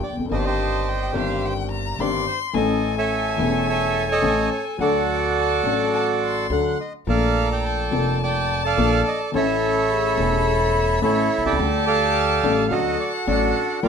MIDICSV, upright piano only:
0, 0, Header, 1, 2, 480
1, 0, Start_track
1, 0, Tempo, 559701
1, 275, Time_signature, 4, 2, 24, 8
1, 4116, Tempo, 564972
1, 11833, End_track
2, 0, Start_track
2, 0, Title_t, "Upright piano"
2, 0, Program_c, 0, 0
2, 104, Note_on_c, 0, 40, 40
2, 160, Note_off_c, 0, 40, 0
2, 161, Note_on_c, 0, 41, 47
2, 218, Note_off_c, 0, 41, 0
2, 220, Note_on_c, 0, 42, 55
2, 252, Note_on_c, 0, 51, 58
2, 266, Note_on_c, 0, 55, 52
2, 272, Note_on_c, 0, 31, 67
2, 273, Note_on_c, 0, 60, 53
2, 275, Note_on_c, 0, 43, 66
2, 278, Note_off_c, 0, 42, 0
2, 286, Note_on_c, 0, 67, 63
2, 945, Note_off_c, 0, 51, 0
2, 952, Note_off_c, 0, 55, 0
2, 955, Note_off_c, 0, 31, 0
2, 956, Note_off_c, 0, 60, 0
2, 957, Note_off_c, 0, 43, 0
2, 962, Note_off_c, 0, 67, 0
2, 967, Note_on_c, 0, 51, 60
2, 975, Note_on_c, 0, 55, 51
2, 978, Note_on_c, 0, 31, 72
2, 980, Note_on_c, 0, 43, 70
2, 987, Note_on_c, 0, 60, 48
2, 1001, Note_on_c, 0, 67, 64
2, 1662, Note_off_c, 0, 51, 0
2, 1666, Note_off_c, 0, 55, 0
2, 1667, Note_off_c, 0, 31, 0
2, 1668, Note_off_c, 0, 43, 0
2, 1672, Note_off_c, 0, 60, 0
2, 1679, Note_off_c, 0, 67, 0
2, 1716, Note_on_c, 0, 43, 72
2, 1717, Note_on_c, 0, 31, 68
2, 1717, Note_on_c, 0, 55, 59
2, 1719, Note_on_c, 0, 51, 59
2, 1721, Note_on_c, 0, 60, 54
2, 1723, Note_on_c, 0, 67, 61
2, 1915, Note_off_c, 0, 31, 0
2, 1915, Note_off_c, 0, 43, 0
2, 1915, Note_off_c, 0, 55, 0
2, 1916, Note_off_c, 0, 51, 0
2, 1917, Note_off_c, 0, 60, 0
2, 1918, Note_off_c, 0, 67, 0
2, 2172, Note_on_c, 0, 52, 63
2, 2178, Note_on_c, 0, 57, 55
2, 2180, Note_on_c, 0, 33, 74
2, 2184, Note_on_c, 0, 45, 69
2, 2195, Note_on_c, 0, 61, 53
2, 2198, Note_on_c, 0, 69, 63
2, 2866, Note_off_c, 0, 52, 0
2, 2869, Note_off_c, 0, 57, 0
2, 2871, Note_off_c, 0, 33, 0
2, 2872, Note_off_c, 0, 45, 0
2, 2878, Note_off_c, 0, 61, 0
2, 2880, Note_off_c, 0, 69, 0
2, 2887, Note_on_c, 0, 52, 64
2, 2899, Note_on_c, 0, 57, 54
2, 2900, Note_on_c, 0, 28, 73
2, 2900, Note_on_c, 0, 40, 76
2, 2908, Note_on_c, 0, 61, 53
2, 2921, Note_on_c, 0, 69, 69
2, 3583, Note_off_c, 0, 52, 0
2, 3589, Note_off_c, 0, 28, 0
2, 3589, Note_off_c, 0, 57, 0
2, 3590, Note_off_c, 0, 40, 0
2, 3593, Note_off_c, 0, 61, 0
2, 3600, Note_off_c, 0, 69, 0
2, 3619, Note_on_c, 0, 33, 72
2, 3619, Note_on_c, 0, 61, 52
2, 3620, Note_on_c, 0, 45, 66
2, 3622, Note_on_c, 0, 52, 60
2, 3622, Note_on_c, 0, 57, 53
2, 3624, Note_on_c, 0, 69, 68
2, 3828, Note_off_c, 0, 33, 0
2, 3828, Note_off_c, 0, 45, 0
2, 3828, Note_off_c, 0, 61, 0
2, 3829, Note_off_c, 0, 52, 0
2, 3830, Note_off_c, 0, 57, 0
2, 3830, Note_off_c, 0, 69, 0
2, 4098, Note_on_c, 0, 54, 59
2, 4107, Note_on_c, 0, 57, 54
2, 4115, Note_on_c, 0, 50, 74
2, 4118, Note_on_c, 0, 38, 74
2, 4123, Note_on_c, 0, 62, 51
2, 4133, Note_on_c, 0, 69, 68
2, 4790, Note_off_c, 0, 54, 0
2, 4794, Note_off_c, 0, 57, 0
2, 4798, Note_off_c, 0, 50, 0
2, 4800, Note_off_c, 0, 38, 0
2, 4802, Note_off_c, 0, 62, 0
2, 4807, Note_off_c, 0, 69, 0
2, 4826, Note_on_c, 0, 54, 53
2, 4836, Note_on_c, 0, 57, 51
2, 4844, Note_on_c, 0, 33, 63
2, 4846, Note_on_c, 0, 45, 65
2, 4851, Note_on_c, 0, 62, 51
2, 4858, Note_on_c, 0, 69, 58
2, 5521, Note_off_c, 0, 54, 0
2, 5526, Note_off_c, 0, 57, 0
2, 5530, Note_off_c, 0, 33, 0
2, 5531, Note_off_c, 0, 45, 0
2, 5533, Note_off_c, 0, 62, 0
2, 5537, Note_off_c, 0, 69, 0
2, 5558, Note_on_c, 0, 54, 55
2, 5562, Note_on_c, 0, 57, 45
2, 5563, Note_on_c, 0, 69, 56
2, 5564, Note_on_c, 0, 38, 63
2, 5566, Note_on_c, 0, 62, 51
2, 5568, Note_on_c, 0, 50, 61
2, 5765, Note_off_c, 0, 54, 0
2, 5766, Note_off_c, 0, 57, 0
2, 5767, Note_off_c, 0, 69, 0
2, 5768, Note_off_c, 0, 38, 0
2, 5768, Note_off_c, 0, 62, 0
2, 5770, Note_off_c, 0, 50, 0
2, 6044, Note_on_c, 0, 53, 56
2, 6052, Note_on_c, 0, 58, 51
2, 6058, Note_on_c, 0, 46, 64
2, 6062, Note_on_c, 0, 34, 62
2, 6069, Note_on_c, 0, 62, 51
2, 6079, Note_on_c, 0, 57, 56
2, 6733, Note_off_c, 0, 53, 0
2, 6737, Note_off_c, 0, 58, 0
2, 6740, Note_off_c, 0, 46, 0
2, 6743, Note_off_c, 0, 34, 0
2, 6746, Note_off_c, 0, 62, 0
2, 6751, Note_off_c, 0, 57, 0
2, 6759, Note_on_c, 0, 53, 58
2, 6768, Note_on_c, 0, 58, 49
2, 6772, Note_on_c, 0, 41, 60
2, 6773, Note_on_c, 0, 29, 61
2, 6778, Note_on_c, 0, 62, 46
2, 6792, Note_on_c, 0, 69, 62
2, 7451, Note_off_c, 0, 53, 0
2, 7455, Note_off_c, 0, 58, 0
2, 7457, Note_off_c, 0, 41, 0
2, 7458, Note_off_c, 0, 29, 0
2, 7460, Note_off_c, 0, 62, 0
2, 7467, Note_off_c, 0, 69, 0
2, 7491, Note_on_c, 0, 46, 63
2, 7492, Note_on_c, 0, 53, 51
2, 7493, Note_on_c, 0, 58, 55
2, 7494, Note_on_c, 0, 34, 73
2, 7495, Note_on_c, 0, 62, 53
2, 7498, Note_on_c, 0, 69, 63
2, 7694, Note_off_c, 0, 46, 0
2, 7694, Note_off_c, 0, 53, 0
2, 7695, Note_off_c, 0, 58, 0
2, 7696, Note_off_c, 0, 34, 0
2, 7696, Note_off_c, 0, 62, 0
2, 7698, Note_off_c, 0, 69, 0
2, 7954, Note_on_c, 0, 52, 61
2, 7971, Note_on_c, 0, 57, 56
2, 7975, Note_on_c, 0, 45, 73
2, 7977, Note_on_c, 0, 33, 72
2, 7980, Note_on_c, 0, 61, 56
2, 7991, Note_on_c, 0, 69, 68
2, 8645, Note_off_c, 0, 52, 0
2, 8653, Note_off_c, 0, 57, 0
2, 8655, Note_off_c, 0, 45, 0
2, 8656, Note_off_c, 0, 33, 0
2, 8658, Note_off_c, 0, 61, 0
2, 8664, Note_off_c, 0, 69, 0
2, 8677, Note_on_c, 0, 52, 52
2, 8687, Note_on_c, 0, 57, 57
2, 8694, Note_on_c, 0, 28, 64
2, 8697, Note_on_c, 0, 40, 60
2, 8701, Note_on_c, 0, 61, 52
2, 8708, Note_on_c, 0, 69, 62
2, 9364, Note_off_c, 0, 52, 0
2, 9369, Note_off_c, 0, 57, 0
2, 9372, Note_off_c, 0, 28, 0
2, 9374, Note_off_c, 0, 40, 0
2, 9376, Note_off_c, 0, 61, 0
2, 9380, Note_off_c, 0, 69, 0
2, 9396, Note_on_c, 0, 52, 60
2, 9397, Note_on_c, 0, 33, 71
2, 9397, Note_on_c, 0, 45, 71
2, 9398, Note_on_c, 0, 57, 51
2, 9399, Note_on_c, 0, 61, 49
2, 9404, Note_on_c, 0, 69, 61
2, 9602, Note_off_c, 0, 52, 0
2, 9603, Note_off_c, 0, 33, 0
2, 9603, Note_off_c, 0, 45, 0
2, 9603, Note_off_c, 0, 57, 0
2, 9604, Note_off_c, 0, 61, 0
2, 9606, Note_off_c, 0, 69, 0
2, 9713, Note_on_c, 0, 35, 39
2, 9769, Note_off_c, 0, 35, 0
2, 9771, Note_on_c, 0, 36, 52
2, 9828, Note_off_c, 0, 36, 0
2, 9831, Note_on_c, 0, 37, 65
2, 9876, Note_on_c, 0, 55, 63
2, 9886, Note_on_c, 0, 57, 59
2, 9888, Note_off_c, 0, 37, 0
2, 9890, Note_on_c, 0, 38, 72
2, 9890, Note_on_c, 0, 50, 70
2, 9896, Note_on_c, 0, 62, 52
2, 9913, Note_on_c, 0, 69, 66
2, 10559, Note_off_c, 0, 55, 0
2, 10564, Note_off_c, 0, 57, 0
2, 10566, Note_off_c, 0, 38, 0
2, 10566, Note_off_c, 0, 50, 0
2, 10569, Note_off_c, 0, 62, 0
2, 10578, Note_off_c, 0, 69, 0
2, 10604, Note_on_c, 0, 62, 54
2, 10606, Note_on_c, 0, 33, 73
2, 10606, Note_on_c, 0, 57, 55
2, 10607, Note_on_c, 0, 45, 67
2, 10609, Note_on_c, 0, 55, 63
2, 10611, Note_on_c, 0, 69, 66
2, 10802, Note_off_c, 0, 62, 0
2, 10803, Note_off_c, 0, 33, 0
2, 10803, Note_off_c, 0, 57, 0
2, 10804, Note_off_c, 0, 45, 0
2, 10805, Note_off_c, 0, 55, 0
2, 10805, Note_off_c, 0, 69, 0
2, 10832, Note_on_c, 0, 54, 65
2, 10834, Note_on_c, 0, 38, 68
2, 10835, Note_on_c, 0, 62, 55
2, 10839, Note_on_c, 0, 50, 68
2, 10840, Note_on_c, 0, 57, 61
2, 10844, Note_on_c, 0, 69, 70
2, 11036, Note_off_c, 0, 54, 0
2, 11037, Note_off_c, 0, 38, 0
2, 11037, Note_off_c, 0, 62, 0
2, 11039, Note_off_c, 0, 50, 0
2, 11040, Note_off_c, 0, 57, 0
2, 11042, Note_off_c, 0, 69, 0
2, 11315, Note_on_c, 0, 33, 75
2, 11315, Note_on_c, 0, 54, 58
2, 11317, Note_on_c, 0, 57, 56
2, 11318, Note_on_c, 0, 45, 71
2, 11319, Note_on_c, 0, 69, 67
2, 11320, Note_on_c, 0, 62, 60
2, 11516, Note_off_c, 0, 33, 0
2, 11516, Note_off_c, 0, 54, 0
2, 11517, Note_off_c, 0, 45, 0
2, 11517, Note_off_c, 0, 57, 0
2, 11518, Note_off_c, 0, 69, 0
2, 11519, Note_off_c, 0, 62, 0
2, 11785, Note_on_c, 0, 55, 76
2, 11789, Note_on_c, 0, 53, 75
2, 11791, Note_on_c, 0, 58, 80
2, 11833, Note_off_c, 0, 53, 0
2, 11833, Note_off_c, 0, 55, 0
2, 11833, Note_off_c, 0, 58, 0
2, 11833, End_track
0, 0, End_of_file